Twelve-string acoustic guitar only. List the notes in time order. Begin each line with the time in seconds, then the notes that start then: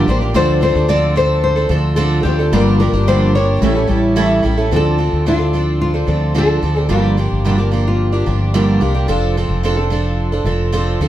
0.07 F3 A#3 D4 G4
0.21 F3 A#3 D4 G4
0.34 D3 F3 C4 D4 A4
0.61 F3 C4 D4 A4
0.75 C4 D4 A4
0.88 D3 F3 C4 D4 A4
1.16 F3 C4 D4 A4
1.56 C4 D4 A4
1.69 F3 C4 D4 A4
1.96 D3 F3 C4 D4 A4
2.24 F3 C4 D4 A4
2.39 C4 D4 A4
2.53 G2 D3 F3 A#3 D4 G4
2.80 F3 A#3 D4 G4
2.93 F3 A#3 D4 G4
3.08 G2 D3 F3 A#3 D4 G4
3.35 F3 A#3 D4 G4
3.62 A2 E3 G3 C#4 E4 A4
3.75 G3 C#4 E4 A4
3.87 G3 C#4 E4 A4
4.16 A2 E3 G3 C#4 E4 A4
4.43 G3 C#4 E4 A4
4.57 G3 C#4 E4 A4
4.71 D3 F3 C4 D4 A4
4.98 F3 C4 D4 A4
5.26 D3 F3 C4 D4 A4
5.39 C4 D4 A4
5.53 F3 C4 D4 A4
5.94 C4 D4 A4
6.07 F3 C4 D4 A4
6.34 D3 F3 C4 D4 A4
6.62 F3 C4 D4 A4
6.76 C4 D4 A4
6.89 G2 D3 F3 A#3 D4 G4
7.17 F3 A#3 D4 G4
7.45 G2 D3 F3 A#3 D4 G4
7.58 F3 A#3 D4 G4
7.72 F3 A#3 D4 G4
8.12 F3 A#3 D4 G4
8.26 F3 A#3 D4 G4
8.54 G2 D3 F3 A#3 D4 G4
8.81 F3 A#3 D4 G4
8.95 F3 A#3 D4 G4
9.08 F3 C4 D4 A4
9.37 F3 C4 D4 A4
9.63 F3 C4 D4 A4
9.77 C4 D4 A4
9.90 F3 C4 D4 A4
10.32 C4 D4 A4
10.45 F3 C4 D4 A4
10.72 F3 C4 D4 A4
11.01 F3 C4 D4 A4